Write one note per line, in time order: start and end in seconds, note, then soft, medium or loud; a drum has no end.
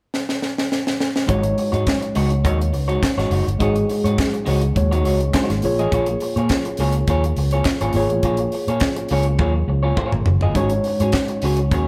0.14 snare medium
0.29 snare medium
0.42 snare medium
0.58 snare medium
0.72 snare medium
0.87 snare medium
1.00 snare medium
1.16 snare medium
1.27 1.52 G#1 medium
1.27 3.55 G#3 medium
1.27 1.46 G#3 medium
1.27 3.56 D#4 medium
1.27 1.44 D#4 medium
1.27 3.56 F#4 medium
1.27 1.43 F#4 medium
1.27 1.42 C#5 medium
1.27 3.57 C#5 medium
1.27 kick loud
1.27 closed hi-hat medium
1.43 muted clean electric guitar stroke soft
1.43 closed hi-hat medium
1.58 muted clean electric guitar stroke soft
1.58 open hi-hat soft
1.72 1.84 G#2 medium
1.72 1.86 G#3 soft
1.72 1.85 D#4 soft
1.72 1.85 F#4 soft
1.72 1.85 C#5 soft
1.72 closed hi-hat soft
1.87 kick loud
1.87 snare loud
1.87 clap medium
1.87 closed hi-hat medium
2.01 muted clean electric guitar stroke soft
2.01 closed hi-hat soft
2.15 2.45 C#2 medium
2.15 2.33 G#3 medium
2.15 2.31 D#4 medium
2.15 2.30 F#4 medium
2.15 2.30 C#5 medium
2.15 open hi-hat medium
2.30 muted clean electric guitar stroke soft
2.30 closed hi-hat soft
2.44 2.73 D#2 loud
2.44 2.62 G#3 medium
2.44 2.60 D#4 medium
2.44 2.59 F#4 medium
2.44 2.58 C#5 medium
2.44 kick loud
2.44 closed hi-hat medium
2.59 muted clean electric guitar stroke soft
2.59 closed hi-hat soft
2.73 2.96 C#2 medium
2.73 muted clean electric guitar stroke soft
2.73 open hi-hat medium
2.88 3.01 G#3 medium
2.88 3.01 D#4 medium
2.88 3.01 F#4 medium
2.88 3.01 C#5 medium
2.88 closed hi-hat soft
3.02 muted clean electric guitar stroke soft
3.02 kick loud
3.02 snare loud
3.02 clap medium
3.02 closed hi-hat medium
3.17 3.29 G#1 medium
3.17 3.30 G#3 medium
3.17 3.31 D#4 medium
3.17 3.31 F#4 medium
3.17 3.32 C#5 medium
3.17 snare soft
3.17 closed hi-hat soft
3.30 3.43 F#1 medium
3.30 3.45 G#3 medium
3.30 3.45 D#4 medium
3.30 3.46 F#4 medium
3.30 3.45 C#5 medium
3.30 open hi-hat medium
3.46 3.58 G1 medium
3.46 muted clean electric guitar stroke soft
3.46 closed hi-hat soft
3.59 3.84 G#1 loud
3.59 4.73 G#3 medium
3.59 3.78 G#3 medium
3.59 4.74 D#4 medium
3.59 3.76 D#4 medium
3.59 4.74 F#4 medium
3.59 3.75 F#4 medium
3.59 4.75 G#4 medium
3.59 3.75 C#5 medium
3.59 kick loud
3.59 closed hi-hat medium
3.76 muted clean electric guitar stroke soft
3.76 closed hi-hat soft
3.89 muted clean electric guitar stroke soft
3.89 open hi-hat medium
4.04 4.15 G#2 loud
4.04 4.18 G#3 soft
4.04 4.18 D#4 soft
4.04 4.17 F#4 soft
4.04 4.17 C#5 medium
4.04 closed hi-hat medium
4.18 kick loud
4.18 snare loud
4.18 clap medium
4.18 closed hi-hat medium
4.34 muted clean electric guitar stroke soft
4.34 closed hi-hat soft
4.46 4.71 C#2 medium
4.46 4.64 G#3 medium
4.46 4.62 D#4 medium
4.46 4.61 F#4 medium
4.46 4.61 C#5 medium
4.46 open hi-hat medium
4.61 muted clean electric guitar stroke soft
4.61 closed hi-hat soft
4.76 5.05 D#2 medium
4.76 5.63 G#3 medium
4.76 5.63 D#4 soft
4.76 5.63 F#4 soft
4.76 5.64 C#5 medium
4.76 muted clean electric guitar stroke soft
4.76 kick loud
4.76 closed hi-hat medium
4.91 5.03 G#3 medium
4.91 5.04 D#4 medium
4.91 5.05 F#4 medium
4.91 5.05 C#5 medium
4.91 closed hi-hat soft
5.04 5.28 C#2 medium
5.04 5.18 G#3 medium
5.04 5.19 D#4 medium
5.04 5.19 F#4 medium
5.04 5.19 C#5 medium
5.04 open hi-hat medium
5.20 muted clean electric guitar stroke soft
5.20 closed hi-hat soft
5.34 5.55 G#3 medium
5.34 5.50 D#4 medium
5.34 5.50 F#4 medium
5.34 5.49 C#5 medium
5.34 kick loud
5.34 snare loud
5.34 clap medium
5.34 closed hi-hat medium
5.50 5.61 G#1 medium
5.50 muted clean electric guitar stroke soft
5.50 snare soft
5.50 closed hi-hat soft
5.62 5.78 A#1 medium
5.62 7.90 A#3 medium
5.62 7.91 F4 medium
5.62 7.91 G#4 medium
5.62 7.92 C#5 medium
5.62 muted clean electric guitar stroke soft
5.62 open hi-hat medium
5.78 5.89 A1 medium
5.78 5.92 A#3 medium
5.78 5.92 F4 soft
5.78 5.91 G#4 medium
5.78 5.91 D#5 medium
5.78 closed hi-hat soft
5.92 6.15 A#1 medium
5.92 6.10 A#3 medium
5.92 6.07 F4 medium
5.92 6.07 G#4 medium
5.92 6.07 C#5 medium
5.92 kick loud
5.92 closed hi-hat medium
6.06 muted clean electric guitar stroke soft
6.06 closed hi-hat medium
6.20 muted clean electric guitar stroke soft
6.20 open hi-hat medium
6.36 6.47 A#2 loud
6.36 6.50 A#3 soft
6.36 6.49 F4 soft
6.36 6.49 G#4 soft
6.36 6.48 C#5 soft
6.36 closed hi-hat medium
6.49 kick loud
6.49 snare loud
6.49 clap medium
6.49 closed hi-hat medium
6.65 muted clean electric guitar stroke soft
6.65 closed hi-hat soft
6.77 7.02 C#2 medium
6.77 6.97 A#3 medium
6.77 6.95 F4 medium
6.77 6.95 G#4 medium
6.77 open hi-hat medium
6.81 6.94 C#5 medium
6.92 muted clean electric guitar stroke soft
6.92 closed hi-hat soft
7.07 7.31 D#2 medium
7.07 7.26 A#3 medium
7.07 7.25 F4 medium
7.07 7.24 G#4 medium
7.07 7.24 C#5 medium
7.07 kick loud
7.07 closed hi-hat medium
7.24 muted clean electric guitar stroke soft
7.24 closed hi-hat soft
7.36 7.60 C#2 medium
7.36 muted clean electric guitar stroke soft
7.36 open hi-hat medium
7.51 7.66 A#3 soft
7.51 7.65 F4 soft
7.51 7.65 G#4 medium
7.51 7.65 C#5 medium
7.51 closed hi-hat soft
7.65 muted clean electric guitar stroke soft
7.65 kick loud
7.65 snare loud
7.65 clap medium
7.65 closed hi-hat medium
7.80 7.92 G#1 medium
7.80 7.93 A#3 medium
7.80 7.95 F4 medium
7.80 7.95 G#4 medium
7.80 7.95 C#5 medium
7.80 closed hi-hat soft
7.93 8.07 G#1 medium
7.93 10.22 A#3 medium
7.93 8.08 A#3 medium
7.93 10.22 F4 medium
7.93 8.09 F4 medium
7.93 10.23 G#4 medium
7.93 8.09 G#4 medium
7.93 open hi-hat medium
7.97 8.10 C#5 medium
7.97 10.23 C#5 medium
8.09 8.21 A1 medium
8.09 muted clean electric guitar stroke soft
8.09 closed hi-hat soft
8.23 8.47 A#1 medium
8.23 8.41 A#3 medium
8.23 8.39 F4 medium
8.23 8.39 G#4 medium
8.23 8.38 C#5 medium
8.23 kick medium
8.23 closed hi-hat medium
8.37 muted clean electric guitar stroke soft
8.37 closed hi-hat soft
8.52 muted clean electric guitar stroke soft
8.52 open hi-hat medium
8.68 8.79 A#2 medium
8.68 8.81 A#3 soft
8.68 8.81 F4 soft
8.68 8.81 G#4 soft
8.68 8.80 C#5 soft
8.68 closed hi-hat medium
8.80 kick loud
8.80 snare loud
8.80 clap loud
8.80 closed hi-hat medium
8.96 muted clean electric guitar stroke soft
8.96 closed hi-hat soft
9.09 9.39 C#2 medium
9.09 9.28 A#3 medium
9.09 9.27 F4 medium
9.09 9.27 G#4 medium
9.09 open hi-hat medium
9.13 9.26 C#5 medium
9.23 closed hi-hat soft
9.27 muted clean electric guitar stroke soft
9.39 9.63 D#2 loud
9.39 9.57 A#3 medium
9.39 9.55 F4 medium
9.39 9.54 G#4 medium
9.39 9.53 C#5 medium
9.39 kick loud
9.39 high tom medium
9.55 muted clean electric guitar stroke soft
9.68 9.92 C#2 loud
9.68 muted clean electric guitar stroke soft
9.83 9.95 A#3 soft
9.83 9.96 F4 medium
9.83 9.96 G#4 medium
9.83 9.96 C#5 medium
9.96 10.18 A#3 medium
9.96 10.12 F4 medium
9.96 10.12 G#4 medium
9.96 10.10 C#5 medium
9.96 kick loud
9.96 mid tom medium
10.12 10.24 G#1 medium
10.12 muted clean electric guitar stroke soft
10.12 mid tom medium
10.26 10.39 F#1 medium
10.26 muted clean electric guitar stroke soft
10.26 floor tom medium
10.41 10.55 G1 medium
10.41 10.55 A#3 medium
10.41 10.55 F4 medium
10.41 10.55 G#4 medium
10.41 10.54 D#5 medium
10.41 floor tom medium
10.54 10.79 G#1 medium
10.54 11.88 G#3 medium
10.54 10.73 C#4 medium
10.54 11.88 D#4 medium
10.54 11.88 F#4 medium
10.54 10.72 F#4 medium
10.54 10.72 G#4 medium
10.54 11.88 C#5 medium
10.54 kick medium
10.54 closed hi-hat medium
10.58 10.71 C#5 medium
10.70 muted clean electric guitar stroke soft
10.70 closed hi-hat soft
10.84 muted clean electric guitar stroke soft
10.84 open hi-hat medium
11.00 11.11 G#2 medium
11.00 11.14 C#4 soft
11.00 11.13 F#4 soft
11.00 11.13 G#4 soft
11.00 11.12 C#5 soft
11.00 closed hi-hat medium
11.12 kick loud
11.12 snare loud
11.12 clap medium
11.12 closed hi-hat medium
11.28 muted clean electric guitar stroke soft
11.28 closed hi-hat soft
11.42 11.71 C#2 medium
11.42 11.60 C#4 medium
11.42 11.60 F#4 medium
11.42 11.59 G#4 medium
11.42 11.58 C#5 medium
11.42 open hi-hat medium
11.57 muted clean electric guitar stroke soft
11.57 closed hi-hat soft
11.71 11.88 D#2 loud
11.71 11.88 C#4 medium
11.71 11.88 F#4 medium
11.71 11.88 G#4 medium
11.71 11.87 C#5 medium
11.71 kick loud
11.71 closed hi-hat medium